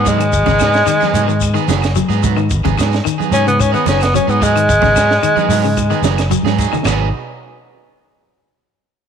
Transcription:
Already playing: fingered electric bass G#2, tenor saxophone B3
0.04 clean electric guitar F#3 B3 D#4 G#4, kick, closed hi-hat, high conga, low conga, shekere
0.09 tenor saxophone G#3
0.19 clean electric guitar D#3, closed hi-hat, claves, shekere
0.33 fingered electric bass G#1, kick, closed hi-hat, high conga, shekere
0.46 fingered electric bass G#1, clean electric guitar C#3 B3 D#4 G#4, kick, snare, high conga, shekere
0.59 fingered electric bass G#2, clean electric guitar F#3 B3 D#4 G#4, kick, snare, closed hi-hat, low conga, claves, shekere
0.73 snare, shekere
0.86 clean electric guitar D#3, snare, closed hi-hat, high conga, claves, shekere
1.00 clean electric guitar B3 D#4 G#4, snare, high conga, shekere
1.14 fingered electric bass G#2, clean electric guitar F#3 B3 D#4 G#4, closed hi-hat, low conga, shekere
1.28 clean electric guitar D#3, shekere
1.41 kick, closed hi-hat, high conga, claves, shekere
1.54 clean electric guitar D#3 B3 D#4 G#4, shekere
1.68 fingered electric bass F#1, clean electric guitar F#3 B3 D#4 G#4, snare, closed hi-hat, high conga, shekere
1.82 snare, closed hi-hat, claves, shekere
1.95 clean electric guitar F#3, closed hi-hat, high conga, shekere
2.09 fingered electric bass G#2, clean electric guitar B3 D#4 G#4, shekere
2.23 clean electric guitar F#3 B3 D#4, muted clean electric guitar stroke, kick, closed hi-hat, high conga, low conga, shekere
2.36 clean electric guitar D#3, claves, shekere
2.50 fingered electric bass G#1, kick, closed hi-hat, high conga, shekere
2.64 fingered electric bass G#1, clean electric guitar C#3 B3 D#4 G#4, kick, high conga, shekere
2.77 fingered electric bass G#2, clean electric guitar F#3 B3 D#4 G#4, kick, snare, closed hi-hat, claves, shekere
2.93 snare, shekere
3.04 clean electric guitar D#3, closed hi-hat, high conga, claves, shekere
3.18 clean electric guitar B3 D#4 G#4, high conga, shekere
3.31 fingered electric bass G#2, clean electric guitar F#3 B3 D#4 G#4, tenor saxophone C#4, closed hi-hat, low conga, shekere
3.47 clean electric guitar C#3, tenor saxophone B3, closed hi-hat, shekere
3.59 tenor saxophone C#4, kick, closed hi-hat, high conga, low conga, claves, shekere
3.72 clean electric guitar D#3 B3 D#4 G#4, tenor saxophone B3, shekere
3.86 fingered electric bass F#1, clean electric guitar F#3 B3 D#4 G#4, tenor saxophone C#4, snare, closed hi-hat, high conga, shekere
4.00 tenor saxophone B3, snare, closed hi-hat, claves, shekere
4.14 clean electric guitar F#3, tenor saxophone C#4, closed hi-hat, high conga, shekere
4.27 fingered electric bass G#2, clean electric guitar B3 D#4 G#4, tenor saxophone B3, shekere
4.40 clean electric guitar F#3 B3 D#4 G#4, tenor saxophone G#3, kick, closed hi-hat, high conga, low conga, shekere
4.56 clean electric guitar D#3, closed hi-hat, claves, shekere
4.68 fingered electric bass G#1, kick, closed hi-hat, high conga, shekere
4.81 fingered electric bass G#1, clean electric guitar C#3 B3 D#4 G#4, kick, snare, high conga, shekere
4.95 fingered electric bass G#2, clean electric guitar F#3 B3 D#4 G#4, kick, snare, closed hi-hat, claves, shekere
5.11 snare, shekere
5.23 clean electric guitar D#3, closed hi-hat, high conga, claves, shekere
5.36 clean electric guitar B3 D#4 G#4, high conga, shekere
5.49 fingered electric bass G#2, clean electric guitar F#3 B3 D#4 G#4, open hi-hat, high conga, low conga, shekere
5.64 clean electric guitar C#3, shekere
5.77 kick, closed hi-hat, high conga, low conga, claves, shekere
5.90 clean electric guitar D#3 B3 D#4 G#4, shekere
6.02 fingered electric bass F#1, clean electric guitar F#3 B3 D#4 G#4, snare, closed hi-hat, high conga, shekere
6.18 snare, closed hi-hat, claves, shekere
6.30 clean electric guitar F#3, closed hi-hat, high conga, shekere
6.43 fingered electric bass G#2, clean electric guitar B3 D#4 G#4, snare, high conga, shekere
6.58 clean electric guitar F#3 D#4 G#4, kick, closed hi-hat, shekere
6.72 clean electric guitar D#3, low conga, claves, shekere
6.85 fingered electric bass G#1, clean electric guitar F#3 B3 D#4 G#4, muted clean electric guitar stroke, snare, floor tom, china, low conga, claves, shekere

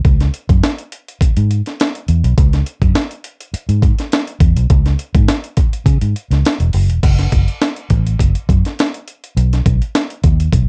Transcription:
0.05 fingered electric bass C#2, kick, closed hi-hat
0.20 snare, closed hi-hat
0.34 closed hi-hat
0.49 fingered electric bass F#2, kick, closed hi-hat
0.64 snare, closed hi-hat
0.79 closed hi-hat
0.92 closed hi-hat
1.08 closed hi-hat
1.21 muted fingered electric bass stroke, kick, closed hi-hat
1.37 fingered electric bass G#2, closed hi-hat
1.51 closed hi-hat
1.66 snare, closed hi-hat
1.80 snare, closed hi-hat
1.95 closed hi-hat
2.08 fingered electric bass E2, closed hi-hat
2.24 fingered electric bass B1, closed hi-hat
2.38 fingered electric bass C#2, kick, closed hi-hat
2.53 snare, closed hi-hat
2.66 closed hi-hat
2.82 fingered electric bass F#2, kick, closed hi-hat
2.95 snare, closed hi-hat
3.11 closed hi-hat
3.24 closed hi-hat
3.41 closed hi-hat
3.54 muted fingered electric bass stroke, closed hi-hat
3.69 fingered electric bass G#2, closed hi-hat
3.82 kick, closed hi-hat
3.99 snare, closed hi-hat
4.12 snare, closed hi-hat
4.27 closed hi-hat
4.40 fingered electric bass E2, kick, closed hi-hat
4.56 fingered electric bass B1, closed hi-hat
4.70 fingered electric bass C#2, kick, closed hi-hat
4.86 snare, closed hi-hat
4.99 closed hi-hat
5.14 fingered electric bass G#2, kick, closed hi-hat
5.28 snare, closed hi-hat
5.44 closed hi-hat
5.57 kick, closed hi-hat
5.73 closed hi-hat
5.86 fingered electric bass C#3, kick, closed hi-hat
6.01 fingered electric bass G#2, closed hi-hat
6.16 closed hi-hat
6.30 fingered electric bass C#2, snare, closed hi-hat
6.45 snare, closed hi-hat
6.60 fingered electric bass E1, closed hi-hat
6.73 fingered electric bass F#1, open hi-hat
6.89 fingered electric bass E1, closed hi-hat
7.03 fingered electric bass F#1, kick, closed hi-hat, crash
7.19 snare, closed hi-hat
7.32 fingered electric bass F#1, kick, closed hi-hat
7.48 closed hi-hat
7.62 snare, closed hi-hat
7.76 closed hi-hat
7.90 fingered electric bass A1, kick, closed hi-hat
8.07 closed hi-hat
8.19 fingered electric bass F#1, kick, closed hi-hat
8.35 closed hi-hat
8.49 fingered electric bass F#2, kick, closed hi-hat
8.65 snare, closed hi-hat
8.79 snare, closed hi-hat
8.94 closed hi-hat
9.08 closed hi-hat
9.24 closed hi-hat
9.37 fingered electric bass B1, closed hi-hat
9.53 snare, closed hi-hat
9.66 fingered electric bass B1, kick, closed hi-hat
9.82 closed hi-hat
9.95 snare, closed hi-hat
10.10 closed hi-hat
10.24 fingered electric bass D#2, kick, closed hi-hat
10.40 closed hi-hat
10.53 fingered electric bass B1, kick, closed hi-hat

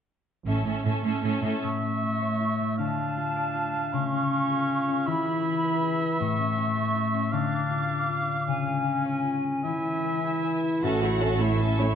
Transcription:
0.46 double bass section A1, cello section A2, viola section C#4, violin section A4 E5
0.65 cello section A2, viola section C#4, violin section A4 E5
0.85 cello section A2, viola section C#4, violin section A4 E5
1.04 cello section A2, viola section C#4, violin section A4 E5
1.23 cello section A2, viola section C#4, violin section A4 E5
1.43 cello section A2, viola section C#4, violin section A4 E5
1.63 harp A2, clarinet A3, oboe E5, flute section C#6
1.83 harp A3
2.02 harp E4
2.22 harp C#5
2.40 harp E4
2.60 harp A3
2.78 harp D3, clarinet D4, oboe F5, flute section A5
2.98 harp A3
3.17 harp F4
3.36 harp D5
3.55 harp F4
3.74 harp A3
3.93 harp C#3, clarinet C#4, flute section C#6
4.12 harp C#4
4.31 harp F4
4.50 harp G#4
4.69 harp F4
4.88 harp C#4
5.06 harp E3, clarinet E4, oboe E5, flute section B5
5.26 harp E4
5.45 harp G#4
5.63 harp B4
5.82 harp G#4
6.01 harp E4
6.20 harp A2, clarinet A3, flute section C#6
6.39 harp C#4
6.58 harp E4
6.76 harp A4
6.95 harp E4
7.14 harp C#4
7.32 harp D3, clarinet D4, oboe F5, flute section D6
7.52 harp D4
7.71 harp F4
7.90 harp A4
8.09 harp F4
8.28 harp D4
8.47 harp C#3, clarinet C#4, flute section G#5
8.66 harp G#3
8.86 harp F4
9.05 harp C#5
9.24 harp F4
9.44 harp G#3
9.64 harp E3, clarinet E4, oboe E5
9.84 harp E4
10.04 harp B4
10.22 clarinet E4, harp G#4, violin section E5
10.43 harp B4
10.63 harp E4
10.83 double bass section A1, cello section A2, harp A2, viola section C#4 A4, clarinet F#4, violin section E5 F#5 A5
11.02 viola section A3 E4, harp A3, violin section C#5 C#6
11.21 french horn section A3 C#4, viola section C#4 A4, harp C#4, violin section E5 A5
11.41 viola section A3 E4, clarinet E4, harp A4, violin section C#5 E5 C#6
11.60 harp C#4, viola section C#4 A4, violin section E5 A5
11.79 french horn section A3 C#4, viola section A3 E4, harp A3, violin section C#5 C#6

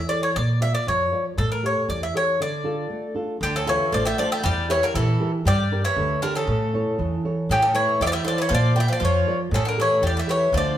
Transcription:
Already playing: nylon-string guitar E3
0.09 nylon-string guitar E4 A4 C#5, bouzouki D5
0.23 bouzouki C#5
0.36 upright bass A#2, nylon-string guitar A#3, bouzouki D5
0.61 nylon-string guitar F4 A#4 D5, bouzouki E5
0.75 bouzouki D5
0.87 upright bass F2, nylon-string guitar F3, bouzouki C#5
1.12 nylon-string guitar F4 A#4 D5
1.37 upright bass A2, nylon-string guitar A3, bouzouki A4
1.52 bouzouki A#4
1.63 nylon-string guitar G4 A4 C#5, bouzouki C#5
1.88 upright bass E2, nylon-string guitar E3, bouzouki D5
2.03 bouzouki E5
2.14 nylon-string guitar G4 A4 C#5, bouzouki C#5
2.40 nylon-string guitar D3, bouzouki D5
2.64 nylon-string guitar D4 F4 A4
2.90 nylon-string guitar A3
3.15 nylon-string guitar D4 F4 A4
3.41 upright bass D2, nylon-string guitar D3, bouzouki D3 G4
3.56 bouzouki C#3 A4
3.66 bouzouki E3 C#5, nylon-string guitar D4 F4 A4
3.92 upright bass A1, bouzouki F3 D5, nylon-string guitar A3
4.05 bouzouki G3 E5
4.18 bouzouki F3 D5, nylon-string guitar D4 F4 A4
4.32 bouzouki G3 E5
4.43 upright bass E2, nylon-string guitar E3, bouzouki G3 D5
4.68 bouzouki E3 C#5, nylon-string guitar E4 G4 A#4
4.83 bouzouki D3 A#4
4.94 upright bass A#2, nylon-string guitar E3, bouzouki E3 A4
5.20 nylon-string guitar E4 G4 A#4
5.44 upright bass G2, nylon-string guitar G3, bouzouki G3 D5
5.71 nylon-string guitar D4 G4 A#4
5.85 bouzouki E3 C#5
5.96 upright bass D2, nylon-string guitar D3
6.22 bouzouki D3 A#4, nylon-string guitar D4 G4 A#4
6.35 bouzouki C#3 A4
6.47 upright bass A2, nylon-string guitar A3
6.74 nylon-string guitar E4 A4 C#5
6.99 upright bass E2, nylon-string guitar E3
7.24 nylon-string guitar E4 A4 C#5
7.49 upright bass A2, bouzouki C#3 G4, nylon-string guitar A3
7.62 bouzouki C#3 A4
7.74 bouzouki E3 C#5, nylon-string guitar E4 A4 C#5
8.00 upright bass E2, nylon-string guitar E3, bouzouki G3 A3 D5 E5
8.06 bouzouki F3 D5
8.12 bouzouki G3 E5
8.24 bouzouki F3 D5, nylon-string guitar E4 A4 C#5
8.38 bouzouki E3 C#5
8.49 upright bass A#2, bouzouki F3, nylon-string guitar A#3
8.54 bouzouki D5
8.74 bouzouki G3, nylon-string guitar F4 A#4 D5
8.80 bouzouki E5
8.88 bouzouki F3
8.93 bouzouki D5
9.00 upright bass F2, bouzouki F3, nylon-string guitar F3
9.05 bouzouki C#5
9.26 nylon-string guitar F4 A#4 D5
9.51 upright bass A2, bouzouki C#3, nylon-string guitar A3
9.55 bouzouki A4
9.65 bouzouki D3 A#4
9.77 bouzouki E3, nylon-string guitar G4 A4 C#5
9.81 bouzouki C#5
10.02 upright bass E2, nylon-string guitar E3, bouzouki G3
10.07 bouzouki D5
10.17 bouzouki G3 E5
10.27 bouzouki E3 C#5, nylon-string guitar G4 A4 C#5
10.52 upright bass D2, nylon-string guitar D3, bouzouki F3
10.57 bouzouki D5

